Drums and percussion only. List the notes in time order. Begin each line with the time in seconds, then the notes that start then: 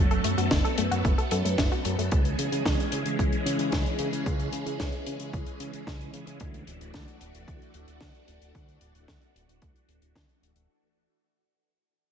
0.11 closed hi-hat
0.24 closed hi-hat
0.38 closed hi-hat
0.51 kick, snare, closed hi-hat
0.65 closed hi-hat
0.78 closed hi-hat
0.92 closed hi-hat
1.05 kick, closed hi-hat
1.18 closed hi-hat
1.31 closed hi-hat
1.45 closed hi-hat
1.58 kick, snare, closed hi-hat
1.72 closed hi-hat
1.85 closed hi-hat
1.99 closed hi-hat
2.12 kick, closed hi-hat
2.25 closed hi-hat
2.39 closed hi-hat
2.52 closed hi-hat
2.65 kick, snare, closed hi-hat
2.80 closed hi-hat
2.92 closed hi-hat
3.06 closed hi-hat
3.19 kick, closed hi-hat
3.32 closed hi-hat
3.46 closed hi-hat
3.59 closed hi-hat
3.72 kick, snare, closed hi-hat
3.86 closed hi-hat
3.99 closed hi-hat
4.13 closed hi-hat
4.26 kick, closed hi-hat
4.39 closed hi-hat
4.53 closed hi-hat
4.66 closed hi-hat
4.80 kick, snare, closed hi-hat
4.92 closed hi-hat
5.06 closed hi-hat
5.20 closed hi-hat
5.33 kick, closed hi-hat
5.46 closed hi-hat
5.60 closed hi-hat
5.73 closed hi-hat
5.87 kick, snare, closed hi-hat
6.01 closed hi-hat
6.14 closed hi-hat
6.27 closed hi-hat
6.40 kick, closed hi-hat
6.54 closed hi-hat
6.67 closed hi-hat
6.81 closed hi-hat
6.94 kick, snare, closed hi-hat
7.08 closed hi-hat
7.21 closed hi-hat
7.35 closed hi-hat
7.48 kick, closed hi-hat
7.62 closed hi-hat
7.74 closed hi-hat
7.88 closed hi-hat
8.01 kick, snare, closed hi-hat
8.15 closed hi-hat
8.28 closed hi-hat
8.42 closed hi-hat
8.55 kick, closed hi-hat
8.68 closed hi-hat
8.81 closed hi-hat
8.95 closed hi-hat
9.08 kick, snare, closed hi-hat
9.22 closed hi-hat
9.36 closed hi-hat
9.49 closed hi-hat
9.62 kick, closed hi-hat
9.76 closed hi-hat
9.89 closed hi-hat
10.02 closed hi-hat
10.16 kick, snare, closed hi-hat
10.29 closed hi-hat
10.43 closed hi-hat
10.56 closed hi-hat